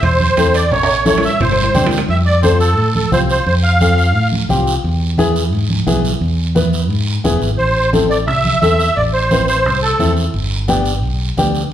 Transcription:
0.03 fingered electric bass E2, accordion C5, low conga, high timbale, long guiro
0.20 high conga
0.37 fingered electric bass E2, nylon-string guitar C4 E4 A4, high conga, high timbale, short guiro
0.54 accordion D5, high timbale, short guiro
0.71 fingered electric bass A1, accordion C#5, low conga, high timbale, long guiro
0.83 high timbale
1.05 nylon-string guitar C#4 E4 A4, accordion C#5, high conga, high timbale, short guiro
1.18 low timbale
1.23 accordion E5, short guiro
1.29 low timbale
1.40 fingered electric bass G1, accordion C5, low conga, low timbale, long guiro
1.52 low timbale
1.63 low timbale
1.74 fingered electric bass D2, nylon-string guitar C4 D4 G4, high conga, low conga, low timbale, short guiro
1.86 low timbale
1.91 short guiro
1.98 low timbale
2.09 fingered electric bass F2, accordion E5, long guiro
2.26 accordion D5
2.42 nylon-string guitar C4 F4 A4, accordion C5, high conga, short guiro
2.60 accordion A4, short guiro
2.77 fingered electric bass A2, long guiro
2.95 accordion A4, high conga
3.12 fingered electric bass C2, nylon-string guitar C4 F4 G4, accordion C5, high conga, short guiro
3.30 accordion C5, short guiro
3.46 fingered electric bass F2, accordion C5, long guiro
3.63 accordion F5
3.81 nylon-string guitar C4 F4 A4, high conga, short guiro
3.98 short guiro
4.15 fingered electric bass A2, long guiro
4.32 high conga
4.49 fingered electric bass C2, nylon-string guitar C4 F4 G4, high conga, short guiro
4.67 short guiro
4.84 fingered electric bass E2, long guiro
5.18 nylon-string guitar B3 E4 G#4, high conga, short guiro
5.36 short guiro
5.53 fingered electric bass G#2, long guiro
5.70 high conga
5.86 fingered electric bass B1, nylon-string guitar B3 E4 G#4, high conga, short guiro
6.05 short guiro
6.21 fingered electric bass E2, long guiro
6.55 nylon-string guitar B3 E4 B4, high conga, short guiro
6.73 short guiro
6.90 fingered electric bass G#2, long guiro
7.24 fingered electric bass E1, nylon-string guitar B3 E4 G#4, high conga, short guiro
7.42 fingered electric bass G#1, short guiro
7.58 fingered electric bass A1, accordion C5, long guiro
7.93 nylon-string guitar C4 E4 A4, high conga, short guiro
8.10 accordion D5, short guiro
8.27 fingered electric bass C2, accordion E5, long guiro
8.45 high conga
8.61 fingered electric bass E2, nylon-string guitar C4 E4 A4, accordion E5, high conga, short guiro
8.80 short guiro
8.96 fingered electric bass A1, accordion D5, long guiro
9.13 accordion C5
9.31 nylon-string guitar C4 E4 B4, high conga, short guiro
9.48 accordion C5, short guiro
9.66 fingered electric bass C2, long guiro
9.82 accordion A4
9.99 fingered electric bass E2, nylon-string guitar C4 E4 A4, high conga, short guiro
10.17 short guiro
10.34 fingered electric bass G1, long guiro
10.68 nylon-string guitar B3 D4 G4, high conga, short guiro
10.85 short guiro
11.03 fingered electric bass B1, long guiro
11.37 fingered electric bass D2, nylon-string guitar B3 D4 G4, high conga, short guiro
11.55 short guiro

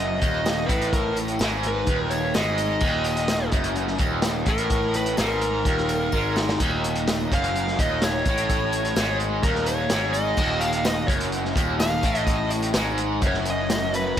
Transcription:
Already playing: picked electric bass F#1, overdriven electric guitar F#2, tonewheel organ F#3 D#4 D#5 A#5, lead electric guitar D#5
0.21 picked electric bass D#1, overdriven electric guitar D#2, kick, closed hi-hat, tambourine
0.46 snare, closed hi-hat, tambourine
0.67 picked electric bass A1, overdriven electric guitar A2, lead electric guitar B4, kick, closed hi-hat, tambourine
0.82 closed hi-hat
0.93 lead electric guitar A#4, kick, closed hi-hat, tambourine
1.16 closed hi-hat, tambourine
1.28 closed hi-hat
1.39 picked electric bass G#1, overdriven electric guitar G#2, snare, closed hi-hat, tambourine
1.63 lead electric guitar B4, closed hi-hat
1.87 picked electric bass D#1, overdriven electric guitar D#2, kick, closed hi-hat
2.02 lead electric guitar A#4
2.10 lead electric guitar C#5, closed hi-hat, tambourine
2.34 picked electric bass G#1, overdriven electric guitar G#2, lead electric guitar D#5, snare, closed hi-hat, tambourine
2.58 closed hi-hat, tambourine
2.80 picked electric bass D#1, overdriven electric guitar D#2, kick, crash, tambourine
3.04 closed hi-hat, tambourine
3.17 closed hi-hat
3.28 snare, closed hi-hat, tambourine
3.52 picked electric bass F#1, overdriven electric guitar F#2, kick, closed hi-hat
3.64 closed hi-hat
3.75 closed hi-hat
3.87 snare
3.98 picked electric bass D#1, overdriven electric guitar D#2, kick, closed hi-hat, tambourine
4.22 snare, closed hi-hat, tambourine
4.46 picked electric bass A1, overdriven electric guitar A2, lead electric guitar A#4, kick, closed hi-hat, tambourine
4.58 closed hi-hat
4.70 kick, closed hi-hat, tambourine
4.94 lead electric guitar B4, closed hi-hat, tambourine
5.06 closed hi-hat
5.17 picked electric bass G#1, overdriven electric guitar G#2, lead electric guitar A#4, snare, closed hi-hat, tambourine
5.41 closed hi-hat, tambourine
5.65 picked electric bass D#1, overdriven electric guitar D#2, kick, closed hi-hat
5.78 snare
5.89 closed hi-hat, tambourine
6.12 picked electric bass G#1, overdriven electric guitar G#2, kick, tambourine
6.36 snare, tambourine
6.49 snare
6.60 picked electric bass D#1, overdriven electric guitar D#2, kick, closed hi-hat, crash, tambourine
6.84 closed hi-hat, tambourine
6.95 closed hi-hat
7.07 snare, closed hi-hat, tambourine
7.31 picked electric bass F#1, overdriven electric guitar F#2, lead electric guitar F5, kick, closed hi-hat
7.44 closed hi-hat
7.55 closed hi-hat
7.68 snare
7.79 picked electric bass D#1, overdriven electric guitar D#2, lead electric guitar D#5, kick, closed hi-hat, tambourine
8.02 lead electric guitar C#5, snare, closed hi-hat, tambourine
8.25 picked electric bass A1, overdriven electric guitar A2, kick, closed hi-hat, tambourine
8.38 closed hi-hat
8.50 kick, closed hi-hat, tambourine
8.72 closed hi-hat, tambourine
8.85 closed hi-hat
8.96 picked electric bass G#1, overdriven electric guitar G#2, snare, closed hi-hat, tambourine
9.20 closed hi-hat
9.43 picked electric bass D#1, overdriven electric guitar D#2, lead electric guitar A#4, kick, closed hi-hat
9.55 snare
9.66 lead electric guitar C#5, closed hi-hat, tambourine
9.90 picked electric bass G#1, overdriven electric guitar G#2, snare, closed hi-hat, tambourine
10.12 lead electric guitar D#5, closed hi-hat, tambourine
10.37 picked electric bass D#1, overdriven electric guitar D#2, kick, tambourine, crash
10.60 lead electric guitar F5, closed hi-hat, tambourine
10.73 closed hi-hat
10.85 lead electric guitar D#5, snare, closed hi-hat, tambourine
11.08 picked electric bass F#1, overdriven electric guitar F#2, lead electric guitar C#5, kick, closed hi-hat
11.20 closed hi-hat
11.32 closed hi-hat
11.45 snare
11.56 picked electric bass D#1, overdriven electric guitar D#2, kick, closed hi-hat, tambourine
11.80 lead electric guitar F5, snare, closed hi-hat, tambourine
12.03 picked electric bass A1, overdriven electric guitar A2, kick, closed hi-hat, tambourine
12.15 closed hi-hat
12.25 lead electric guitar D#5, kick, closed hi-hat, tambourine
12.50 closed hi-hat, tambourine
12.62 closed hi-hat
12.74 picked electric bass G#1, overdriven electric guitar G#2, snare, closed hi-hat, tambourine
12.98 closed hi-hat, tambourine
13.22 picked electric bass F#1, overdriven electric guitar F#2, kick, closed hi-hat, tambourine
13.27 lead electric guitar C#5
13.34 snare
13.45 closed hi-hat, tambourine
13.50 lead electric guitar D#5
13.70 snare, closed hi-hat, tambourine
13.94 lead electric guitar B4, closed hi-hat, tambourine

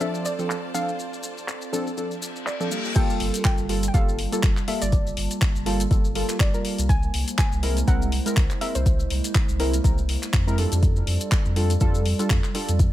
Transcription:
Already playing: ambient pad C4 A4 D5 F5, string section F4 C5 D5 A5
0.00 synth keys F3 C4 D4 A4, synth pluck E5, closed hi-hat, maracas
0.14 maracas
0.25 synth pluck D5, maracas
0.39 synth keys F3 C4 D4 A4, closed hi-hat, maracas
0.50 clap, closed hi-hat, maracas
0.74 synth keys F3 C4 D4 A4, synth pluck F5, maracas
0.88 closed hi-hat, maracas
0.99 closed hi-hat, maracas
1.13 maracas
1.23 maracas
1.37 closed hi-hat, maracas
1.48 clap, closed hi-hat, maracas
1.61 maracas
1.72 synth keys F3 C4 D4 A4, maracas
1.87 closed hi-hat, maracas
1.97 synth keys F3 C4 D4 A4, closed hi-hat, reverse cymbal, maracas
2.11 maracas
2.22 maracas
2.36 closed hi-hat, maracas
2.47 synth pluck D5, clap, closed hi-hat, maracas
2.60 synth keys F3 C4 D4 A4, maracas
2.71 synth keys G3 A#3 F4 A4, maracas
2.85 closed hi-hat, maracas
2.95 synth keys G3 A#3 F4 A4, ambient pad G3 A#3 F4 A5, synth pluck G5, kick, closed hi-hat, crash, maracas
3.10 maracas
3.20 sub bass G1, open hi-hat
3.34 closed hi-hat, maracas
3.45 synth pluck G5, kick, clap, closed hi-hat, maracas
3.58 sub bass G1, maracas
3.69 synth keys G3 A#3 F4 A4, open hi-hat
3.83 closed hi-hat, maracas
3.88 synth pluck G5
3.94 sub bass G1, synth keys G3 A#3 F4 A4, synth pluck F5, kick, closed hi-hat, maracas
4.09 maracas
4.19 open hi-hat
4.32 synth keys G3 A#3 F4 A4, closed hi-hat, maracas
4.43 sub bass G1, kick, clap, closed hi-hat, maracas
4.57 clap, maracas
4.68 synth keys G3 A#3 F4 A4, synth pluck E5, open hi-hat
4.82 sub bass G1, synth pluck D5, closed hi-hat, maracas
4.92 kick, closed hi-hat, maracas
5.07 maracas
5.17 sub bass G1, open hi-hat
5.31 closed hi-hat, maracas
5.41 kick, clap, closed hi-hat, maracas
5.55 sub bass G1, maracas
5.66 synth keys G3 A#3 F4 A4, open hi-hat
5.80 closed hi-hat, maracas
5.91 sub bass G1, synth keys G3 A#3 F4 A4, kick, closed hi-hat, maracas
6.05 maracas
6.15 synth keys G3 A#3 F4 A4, open hi-hat
6.29 clap, closed hi-hat, maracas
6.40 sub bass G1, synth pluck D5, kick, clap, closed hi-hat, maracas
6.53 synth keys G3 A#3 F4 A#4, maracas
6.65 open hi-hat
6.78 sub bass C2, closed hi-hat, maracas
6.89 ambient pad G#3 E4 C5, synth pluck G#5, kick, closed hi-hat, maracas
7.03 maracas
7.14 sub bass C2, open hi-hat
7.28 closed hi-hat, maracas
7.38 synth pluck G#5, kick, clap, closed hi-hat, maracas
7.52 sub bass C2, maracas
7.63 synth keys G#3 C4 E4 A#4, open hi-hat
7.77 closed hi-hat, maracas
7.87 sub bass C2, synth keys G#3 C4 E4 A#4, synth pluck F#5, kick, closed hi-hat, maracas
8.02 maracas
8.12 open hi-hat
8.26 synth keys G#3 C4 E4 A#4, closed hi-hat, maracas
8.37 sub bass C2, kick, clap, closed hi-hat, maracas
8.51 clap, maracas
8.61 synth keys G#3 C4 E4 A#4, synth pluck E5, open hi-hat
8.75 sub bass C2, synth pluck C5, closed hi-hat, maracas
8.86 kick, closed hi-hat, maracas
8.99 maracas
9.10 sub bass C2, open hi-hat
9.24 closed hi-hat, maracas
9.34 kick, clap, closed hi-hat, maracas
9.49 sub bass C2, maracas
9.59 synth keys G#3 C4 E4 A#4, open hi-hat
9.73 closed hi-hat, maracas
9.84 sub bass C2, synth keys G#3 C4 E4 A#4, kick, closed hi-hat, maracas
9.98 maracas
10.09 open hi-hat
10.23 clap, closed hi-hat, maracas
10.33 sub bass F2, kick, clap, closed hi-hat, maracas
10.47 synth keys G#3 C4 E4 A#4, maracas
10.57 synth keys G3 D4 F4 A4, ambient pad G3 F4 A4 D5, open hi-hat
10.72 sub bass F2, closed hi-hat, maracas
10.83 kick, closed hi-hat, maracas
10.96 maracas
11.07 sub bass F2, open hi-hat
11.21 closed hi-hat, maracas
11.32 kick, clap, closed hi-hat, maracas
11.45 sub bass F2, maracas
11.56 synth keys G3 D4 F4 A4, open hi-hat
11.70 closed hi-hat, maracas
11.80 sub bass F2, synth keys G3 D4 F4 A4, kick, closed hi-hat, maracas
11.95 maracas
12.06 open hi-hat
12.19 synth keys G3 D4 F4 A4, closed hi-hat, maracas
12.30 sub bass F2, kick, clap, closed hi-hat, maracas
12.44 clap, maracas
12.54 synth keys G3 D4 F4 A4, open hi-hat
12.68 sub bass F2, closed hi-hat, maracas
12.79 kick, closed hi-hat, maracas

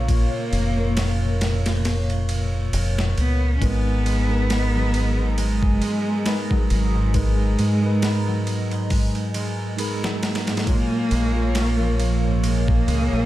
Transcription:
Already playing: fingered electric bass A#1, tine electric piano A#2 A#3 F4 C#5, analog synth pad A#4 C#5 F5 C#6
0.08 tine electric piano A#2 A#3 F4 C#5, cello A#3, kick, ride
0.53 fingered electric bass F1, ride
0.76 tine electric piano A#2 A#3 F4
0.80 tine electric piano A#4
0.97 snare, ride
1.41 snare, ride
1.66 snare, ride
1.85 snare, ride
2.10 ride
2.29 ride
2.73 fingered electric bass F1, ride
2.99 snare
3.18 fingered electric bass C#2, cello B3, ride
3.57 tine electric piano G#3, cello C#4, analog synth pad G#4 D#5
3.61 fingered electric bass G#1, harp G#3, cello B3, tine electric piano D#4 A#4 B4, analog synth pad A#5, kick, ride
4.05 harp G#3, ride
4.28 tine electric piano G#3 D#4 A#4
4.32 tine electric piano B4
4.50 harp B3, snare, ride
4.75 harp F#3
4.94 ride
5.19 harp G#2
5.38 harp G#3, cello G#3, ride
5.63 kick
5.82 harp G#3, ride
6.25 tine electric piano G#3 D#4 A#4 B4, harp B3, snare, ride
6.50 harp F#3, kick
6.70 fingered electric bass G#1, cello F#3, ride
6.94 harp G#2
7.14 tine electric piano G#3 D#4 A#4 B4, harp G#3, cello G#3, kick, ride
7.59 fingered electric bass G#2, harp G#3, ride
7.81 tine electric piano G#3 D#4 A#4
7.86 tine electric piano B4
8.02 harp B3, snare, ride
8.28 harp F#3
8.47 ride
8.71 harp G#2, ride
8.90 harp G#3, kick, open hi-hat
9.15 ride
9.34 harp G#3, ride
9.77 tine electric piano G#3 D#4 G#4 A#4, harp B3, ride
10.03 harp F#3, snare
10.23 cello A#3, snare, ride
10.35 snare, ride
10.47 harp G#2, snare, ride
10.57 snare, ride
10.66 tine electric piano A#2 A#3 F4 C#5, harp G#3, analog synth pad A#4 C#5 F5 C#6, kick, ride
11.11 fingered electric bass A#1, harp G#3, ride
11.33 tine electric piano A#2 A#3 F4
11.37 tine electric piano A#4
11.55 harp A#3, snare, ride
11.80 harp F3
12.00 ride
12.24 harp G#2
12.43 harp G#3, cello A#3, analog synth pad D#6, ride
12.68 kick
12.87 fingered electric bass C#2, harp G#3, ride
13.13 fingered electric bass A#1

